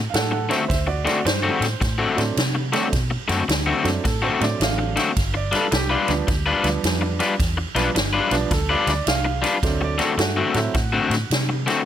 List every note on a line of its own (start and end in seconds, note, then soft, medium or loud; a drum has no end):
0.10 0.31 A4 medium
0.10 0.14 F5 medium
0.14 0.50 A2 medium
0.14 0.31 F#5 medium
0.14 snare loud
0.14 ride medium
0.31 0.50 A4 medium
0.31 0.51 F#5 medium
0.31 muted overdriven electric guitar stroke medium
0.49 0.62 D3 medium
0.49 0.63 A3 medium
0.49 0.63 C4 medium
0.49 0.63 F#4 medium
0.49 0.67 C5 medium
0.49 0.68 E5 medium
0.49 snare soft
0.49 ride medium
0.68 1.06 D2 medium
0.68 0.86 C5 medium
0.68 0.88 E5 medium
0.68 kick loud
0.68 snare soft
0.68 ride medium
0.87 1.05 F#4 medium
0.87 1.06 D5 medium
0.87 muted overdriven electric guitar stroke medium
1.05 1.18 D3 medium
1.05 1.19 A3 medium
1.05 1.19 C4 medium
1.05 1.19 F#4 medium
1.05 1.24 F#4 medium
1.05 1.25 D5 medium
1.05 snare soft
1.05 ride medium
1.25 1.49 G2 medium
1.25 2.34 C5 medium
1.25 muted overdriven electric guitar stroke soft
1.25 snare loud
1.25 ride medium
1.43 1.65 D3 medium
1.43 1.65 A3 medium
1.43 1.64 C4 medium
1.43 1.64 F#4 medium
1.60 1.74 A2 medium
1.60 snare soft
1.60 ride medium
1.81 2.05 A2 medium
1.81 muted overdriven electric guitar stroke soft
1.81 kick loud
1.81 snare soft
1.81 ride medium
1.98 2.20 D3 medium
1.98 2.20 A3 medium
1.98 2.20 C4 medium
1.98 2.20 F#4 medium
2.17 2.31 A2 medium
2.17 2.35 F#3 medium
2.17 2.35 A3 medium
2.17 2.35 C4 medium
2.17 2.35 D4 medium
2.17 snare soft
2.17 ride medium
2.37 2.73 C3 medium
2.37 snare medium
2.37 ride medium
2.55 muted overdriven electric guitar stroke soft
2.72 2.86 D3 medium
2.72 2.91 F#3 medium
2.72 2.91 A3 medium
2.72 2.86 A3 medium
2.72 2.91 C4 medium
2.72 2.86 C4 medium
2.72 2.91 D4 medium
2.72 2.86 F#4 medium
2.72 snare soft
2.72 ride medium
2.93 3.16 B2 medium
2.93 kick loud
2.93 snare soft
2.93 ride medium
3.11 muted overdriven electric guitar stroke medium
3.28 3.42 F#2 medium
3.28 3.41 D3 medium
3.28 3.42 A3 medium
3.28 3.42 C4 medium
3.28 3.42 F#4 medium
3.28 snare soft
3.28 ride medium
3.48 3.72 D2 medium
3.48 muted overdriven electric guitar stroke soft
3.48 snare loud
3.48 ride medium
3.66 3.88 D3 medium
3.66 3.88 A3 medium
3.66 3.88 C4 medium
3.66 3.88 F#4 medium
3.84 3.98 F#2 medium
3.84 4.03 F#3 medium
3.84 4.02 A3 medium
3.84 4.03 C4 medium
3.84 4.03 D4 medium
3.84 snare soft
3.84 ride medium
4.04 4.28 A2 medium
4.04 4.24 A4 medium
4.04 muted overdriven electric guitar stroke soft
4.04 kick loud
4.04 snare soft
4.04 ride medium
4.22 4.44 D3 medium
4.22 4.44 A3 medium
4.22 4.44 C4 medium
4.22 4.43 F#4 medium
4.22 4.42 C5 medium
4.40 4.54 A2 medium
4.40 5.12 F#3 medium
4.40 5.12 A3 medium
4.40 5.12 C4 medium
4.40 5.12 D4 medium
4.40 4.61 D5 medium
4.40 snare soft
4.40 ride medium
4.58 4.96 A1 medium
4.58 4.62 E5 medium
4.58 snare loud
4.58 ride medium
4.62 5.34 F5 medium
4.78 muted overdriven electric guitar stroke soft
4.96 5.09 D3 medium
4.96 5.09 A3 medium
4.96 5.10 C4 medium
4.96 5.10 F#4 medium
4.96 snare soft
4.96 ride medium
5.16 5.52 G1 medium
5.16 kick loud
5.16 snare soft
5.16 ride medium
5.34 5.54 D5 medium
5.34 muted overdriven electric guitar stroke soft
5.52 5.65 G3 medium
5.52 5.65 D4 medium
5.52 5.65 F4 medium
5.52 5.66 B4 medium
5.52 snare soft
5.52 ride soft
5.56 5.73 A4 medium
5.72 5.95 C2 medium
5.72 6.81 G4 medium
5.72 muted overdriven electric guitar stroke soft
5.72 snare loud
5.72 ride medium
5.90 6.12 G3 medium
5.90 6.12 D4 medium
5.90 6.11 F4 medium
5.90 6.11 B4 medium
6.08 6.21 D2 medium
6.08 6.26 F3 medium
6.08 6.26 G3 medium
6.08 6.26 B3 medium
6.08 6.26 D4 medium
6.08 snare soft
6.08 ride medium
6.27 6.51 D2 medium
6.27 muted overdriven electric guitar stroke soft
6.27 kick loud
6.27 snare soft
6.27 ride medium
6.46 6.68 G3 medium
6.46 6.67 D4 medium
6.46 6.67 F4 medium
6.46 6.67 B4 medium
6.63 6.77 D2 medium
6.63 7.35 F3 medium
6.63 7.35 G3 medium
6.63 7.35 B3 medium
6.63 7.36 D4 medium
6.63 snare soft
6.63 ride medium
6.84 7.20 F2 medium
6.84 snare loud
6.84 ride medium
7.01 muted overdriven electric guitar stroke soft
7.20 7.33 G3 medium
7.20 7.33 D4 medium
7.20 7.33 F4 medium
7.20 7.33 B4 medium
7.20 snare soft
7.20 ride medium
7.40 7.63 E2 medium
7.40 kick loud
7.40 snare soft
7.40 ride medium
7.57 muted overdriven electric guitar stroke soft
7.75 7.88 B1 medium
7.75 7.93 F3 medium
7.75 7.88 G3 medium
7.75 7.93 G3 medium
7.75 7.93 B3 medium
7.75 7.89 D4 medium
7.75 7.94 D4 medium
7.75 7.89 F4 medium
7.75 7.89 B4 medium
7.75 snare soft
7.75 ride medium
7.95 8.19 G1 medium
7.95 muted overdriven electric guitar stroke soft
7.95 snare medium
7.95 ride medium
8.13 8.35 G3 medium
8.13 8.35 D4 medium
8.13 8.34 F4 medium
8.13 8.34 B4 medium
8.31 8.44 B1 medium
8.31 8.49 F3 medium
8.31 8.50 G3 medium
8.31 8.50 B3 medium
8.31 8.50 D4 medium
8.31 snare soft
8.31 ride medium
8.51 8.74 D2 medium
8.51 8.70 A4 medium
8.51 muted overdriven electric guitar stroke soft
8.51 kick loud
8.51 snare soft
8.51 ride medium
8.69 8.91 G3 medium
8.69 8.91 D4 medium
8.69 8.90 F4 medium
8.69 8.90 B4 loud
8.69 8.87 D5 medium
8.87 9.00 D2 medium
8.87 9.07 D5 medium
8.87 snare soft
8.87 ride medium
9.04 9.43 C2 medium
9.04 9.08 E5 medium
9.04 snare loud
9.04 ride medium
9.09 9.80 F5 medium
9.25 muted overdriven electric guitar stroke soft
9.42 9.55 G3 medium
9.42 9.56 D4 medium
9.42 9.56 F4 medium
9.42 9.56 B4 medium
9.42 snare soft
9.42 ride medium
9.63 9.99 D2 medium
9.63 9.95 F#3 medium
9.63 9.95 A3 medium
9.63 9.95 C4 medium
9.63 9.96 D4 medium
9.63 kick loud
9.63 snare soft
9.63 ride medium
9.81 10.01 D5 medium
9.81 muted overdriven electric guitar stroke medium
9.98 10.11 D3 medium
9.98 10.12 A3 medium
9.98 10.12 C4 medium
9.98 10.12 F#4 medium
9.98 10.19 A4 medium
9.98 snare soft
9.98 ride medium
10.18 10.41 G2 medium
10.18 10.54 A3 medium
10.18 11.28 F#4 loud
10.18 muted overdriven electric guitar stroke soft
10.18 snare loud
10.18 ride medium
10.37 10.58 D3 medium
10.37 10.58 A3 medium
10.37 10.58 C4 medium
10.37 10.58 F#4 medium
10.54 10.67 A2 medium
10.54 10.73 F#3 medium
10.54 10.73 A3 medium
10.54 10.73 C4 medium
10.54 10.73 E4 medium
10.54 snare soft
10.54 ride medium
10.74 10.98 A2 medium
10.74 muted overdriven electric guitar stroke soft
10.74 kick loud
10.74 snare soft
10.74 ride medium
10.93 11.14 D3 medium
10.93 11.14 A3 medium
10.93 11.14 C4 medium
10.93 11.14 F#4 medium
11.10 11.23 A2 medium
11.10 snare soft
11.10 ride medium
11.30 11.66 C3 medium
11.30 snare loud
11.30 ride medium
11.49 muted overdriven electric guitar stroke soft
11.66 11.79 D3 medium
11.66 11.80 A3 medium
11.66 11.80 C4 medium
11.66 11.80 F#4 medium
11.66 snare soft
11.66 ride medium